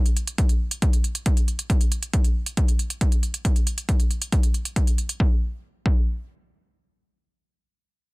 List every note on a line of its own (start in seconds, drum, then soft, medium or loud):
0.06 closed hi-hat medium
0.17 closed hi-hat medium
0.27 closed hi-hat medium
0.38 kick loud
0.38 closed hi-hat medium
0.49 closed hi-hat soft
0.71 closed hi-hat soft
0.82 kick loud
0.82 closed hi-hat medium
0.93 closed hi-hat medium
1.04 closed hi-hat soft
1.15 closed hi-hat soft
1.26 kick loud
1.26 closed hi-hat medium
1.37 closed hi-hat medium
1.48 closed hi-hat soft
1.59 closed hi-hat soft
1.70 kick loud
1.70 closed hi-hat medium
1.81 closed hi-hat medium
1.92 closed hi-hat medium
2.03 closed hi-hat medium
2.13 kick loud
2.13 closed hi-hat medium
2.24 closed hi-hat soft
2.46 closed hi-hat medium
2.57 kick loud
2.57 closed hi-hat medium
2.68 closed hi-hat medium
2.79 closed hi-hat soft
2.90 closed hi-hat medium
3.01 kick loud
3.01 closed hi-hat medium
3.12 closed hi-hat medium
3.23 closed hi-hat soft
3.34 closed hi-hat medium
3.45 kick loud
3.45 closed hi-hat medium
3.56 closed hi-hat medium
3.67 closed hi-hat medium
3.78 closed hi-hat medium
3.89 kick loud
3.89 closed hi-hat medium
4.00 closed hi-hat soft
4.11 closed hi-hat soft
4.22 closed hi-hat medium
4.32 kick loud
4.32 closed hi-hat medium
4.43 closed hi-hat medium
4.54 closed hi-hat soft
4.65 closed hi-hat medium
4.76 kick loud
4.76 closed hi-hat medium
4.87 closed hi-hat medium
4.98 closed hi-hat soft
5.09 closed hi-hat medium
5.20 kick loud
5.86 kick loud